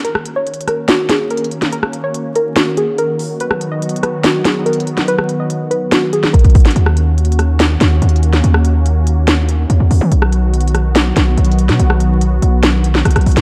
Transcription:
0.05 D#3 A#3 C#4 F#4 A#4, closed hi-hat
0.15 cross-stick
0.26 closed hi-hat
0.36 C#5
0.47 closed hi-hat
0.54 closed hi-hat
0.61 closed hi-hat
0.68 A#4, cross-stick, closed hi-hat
0.88 F#4, snare, closed hi-hat
1.09 G#4, snare, closed hi-hat
1.30 A#4, closed hi-hat
1.37 closed hi-hat
1.44 closed hi-hat
1.51 closed hi-hat
1.62 snare, closed hi-hat
1.73 A#4, closed hi-hat
1.83 cross-stick
1.93 closed hi-hat
2.04 C#5
2.14 closed hi-hat
2.35 A#4, closed hi-hat
2.56 F#4, snare, closed hi-hat
2.77 G#4, closed hi-hat
2.98 A#4, closed hi-hat
3.19 open hi-hat
3.40 F#3 B3 B4, closed hi-hat
3.51 cross-stick
3.61 closed hi-hat
3.72 D#5
3.82 closed hi-hat
3.89 closed hi-hat
3.96 closed hi-hat
4.03 B4, cross-stick, closed hi-hat
4.24 F#4, snare, closed hi-hat
4.45 G#4, snare, closed hi-hat
4.66 A#4, closed hi-hat
4.73 closed hi-hat
4.80 closed hi-hat
4.87 closed hi-hat
4.97 snare, closed hi-hat
5.08 B4, closed hi-hat
5.18 cross-stick
5.29 closed hi-hat
5.40 D#5
5.50 closed hi-hat
5.71 B4, closed hi-hat
5.92 F#4, snare, closed hi-hat
6.13 G#4, closed hi-hat
6.23 snare
6.33 A#4, kick, closed hi-hat
6.39 closed hi-hat
6.44 kick, closed hi-hat
6.50 closed hi-hat
6.55 kick, closed hi-hat, open hi-hat
6.60 closed hi-hat
6.65 snare, closed hi-hat
6.71 closed hi-hat
6.76 D#2 A#3 C#4, closed hi-hat
6.86 cross-stick
6.97 closed hi-hat
7.18 closed hi-hat
7.25 closed hi-hat
7.32 closed hi-hat
7.39 cross-stick, closed hi-hat
7.60 snare, closed hi-hat
7.81 D#2, snare, closed hi-hat
8.02 D#2, closed hi-hat
8.09 closed hi-hat
8.16 closed hi-hat
8.23 closed hi-hat
8.33 snare, closed hi-hat
8.44 D#2, closed hi-hat
8.54 cross-stick
8.65 closed hi-hat
8.86 closed hi-hat
9.07 closed hi-hat
9.28 snare, closed hi-hat
9.49 closed hi-hat
9.70 D#2, closed hi-hat
9.80 D#2
9.91 D#2, open hi-hat
10.01 D#3
10.12 B1 D#3 F#3 B3 F#4, closed hi-hat
10.22 cross-stick
10.32 closed hi-hat
10.54 closed hi-hat
10.61 closed hi-hat
10.68 closed hi-hat
10.75 cross-stick, closed hi-hat
10.95 snare, closed hi-hat
11.16 B1, snare, closed hi-hat
11.37 B1, closed hi-hat
11.45 closed hi-hat
11.52 closed hi-hat
11.59 closed hi-hat
11.69 B2, snare, closed hi-hat
11.79 B1, closed hi-hat
11.90 cross-stick
12.00 closed hi-hat
12.21 closed hi-hat
12.42 B1, closed hi-hat
12.63 snare, closed hi-hat
12.84 closed hi-hat
12.95 snare
13.05 B1, cross-stick, closed hi-hat
13.11 closed hi-hat
13.16 B1, cross-stick, closed hi-hat
13.21 closed hi-hat
13.26 B1, closed hi-hat, open hi-hat
13.32 closed hi-hat
13.37 B1, snare, closed hi-hat

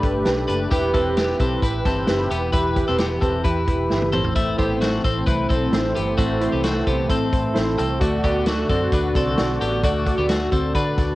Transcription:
Already playing: A3 D4 G4 A4 B4 D5
0.02 G1 G4 A4 B4, kick, closed hi-hat
0.25 B1 G4 A4 B4, snare, closed hi-hat
0.48 F#1 D4 G4 A4 B4, closed hi-hat
0.71 E1 E3 B3 E4 G4 B4, kick, closed hi-hat
0.93 E1 C4 E4 G4 A4 B4, kick, closed hi-hat
1.16 B3 E4 G4 B4, snare, closed hi-hat
1.39 B1 C4 E4 G4 A4 B4, kick, closed hi-hat
1.62 A1 E4 G4 B4, kick, closed hi-hat
1.84 G1 C4 E4 G4 A4 B4, kick, snare, closed hi-hat
2.07 F#1 E4 G4 B4, snare, closed hi-hat
2.30 E1 B3 E4 G4 B4, closed hi-hat
2.52 E1 E4 G4 B4, kick, closed hi-hat
2.75 E4 G4 B4, kick, closed hi-hat
2.88 E1 C4 A4
2.98 B3 E4 G4 B4, snare, closed hi-hat
3.21 E1 C4 E4 G4 A4 B4, kick, closed hi-hat
3.44 E2 E4 G4 B4, kick, closed hi-hat
3.67 E1 E4 G4 B4, kick, closed hi-hat
3.90 G1 E4 G4 B4, snare
4.02 high tom
4.12 A1 A3 C4 E4 A4 C5, mid tom
4.24 floor tom
4.36 A3 E4, kick, closed hi-hat
4.58 A1 B3 E4 G4 A4 C5, kick, closed hi-hat
4.81 A3 E4 F#4 A4 C5, snare, closed hi-hat
5.04 A1 C4 E4 A4 C5, kick, closed hi-hat
5.26 C2 E4 A4 B4 C5, kick, closed hi-hat
5.49 B1 C4 E4 A4 C5, kick, closed hi-hat
5.72 A1 E4 A4 C5, snare, closed hi-hat
5.95 G1 B3 E4 G4 A4 C5, closed hi-hat
6.18 A1 A3 E4 F#4 A4 C5, kick, closed hi-hat
6.40 E4 A4 C5, closed hi-hat
6.52 C2 B3 G4
6.63 A3 E4 F#4 A4 C5, snare, closed hi-hat
6.86 C2 B3 E4 G4 A4 C5, kick, closed hi-hat
7.08 A2 C4 E4 A4 C5, kick, closed hi-hat
7.31 A2 E4 A4 C5, kick, closed hi-hat
7.54 A1 E4 A4 C5 A5, snare, closed hi-hat
7.77 C2 C4 E4 A4 C5 G5, closed hi-hat
8.00 D2 D3 A3 F#4 A4 D5, kick, closed hi-hat
8.23 D2 B3 F#4 G4 A4 D5, kick, closed hi-hat
8.46 A3 F#4 A4 D5, snare, closed hi-hat
8.69 F#2 C4 F#4 A4 D5, kick, closed hi-hat
8.92 D2 D4 F#4 A4 B4 D5, kick, closed hi-hat
9.15 C2 C4 F#4 A4 D5, kick, snare, closed hi-hat
9.37 B1 F#4 A4 D5, snare, closed hi-hat
9.61 A1 B3 F#4 G4 A4 D5, closed hi-hat
9.83 D2 A3 F#4 A4 D5, kick, closed hi-hat
10.06 F#4 A4 D5, kick, closed hi-hat
10.18 D2 B3 G4
10.29 A3 F#4 A4 D5, snare, closed hi-hat
10.51 D2 C4 F#4 A4 D5, kick, closed hi-hat
10.74 D3 D4 F#4 A4 B4 D5, kick, closed hi-hat
10.97 D2 F#4 A4 D5, kick, snare, closed hi-hat

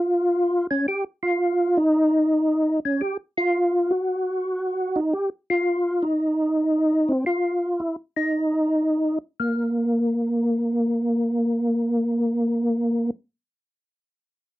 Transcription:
Already playing: F4
0.71 C#4
0.88 G4
1.23 F4
1.77 D#4
2.85 C#4
3.01 G4
3.38 F4
3.91 F#4
4.96 D#4
5.13 G4
5.50 F4
6.02 D#4
7.08 C4
7.26 F4
7.80 E4
8.16 D#4
9.40 A#3

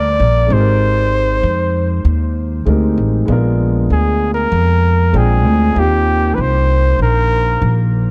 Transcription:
Already playing: D2 G3 A#3 D4 F4 G4 D5
0.20 A#1
0.47 G#1 G#3 C4 D#4
0.52 G4 G#4 C5
0.60 A#4
1.43 F2
2.05 D#2
2.65 D2 G#3 C4 D#4 G4 A#4
2.98 A1
3.26 A#1 G#3 B3 D4
3.31 F4 A#4
3.90 D2 G#4
4.34 A#4
4.52 F2
5.12 A#1 G#3 C4 D4 F4 G5
5.18 G#4
5.45 D2
5.73 D#2 A#3 C4 D#4
5.77 F4 G4
6.35 C2 B4
6.41 C5
6.99 A#1 A#4
7.62 A#1

